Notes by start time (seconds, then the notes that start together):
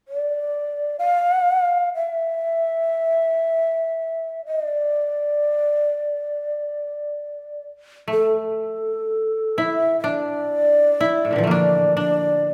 0.08 D5
0.99 F5
1.95 F5
2.07 E5
4.46 D#5
4.65 D5
8.08 A3
8.13 A4
9.58 E4 E5
10.00 D4 E5
10.08 D5
11.00 E4
11.25 A2
11.31 A#2 D3
11.36 E3 F3
11.44 A3 A#3
11.50 D4 D5
11.97 D4 D5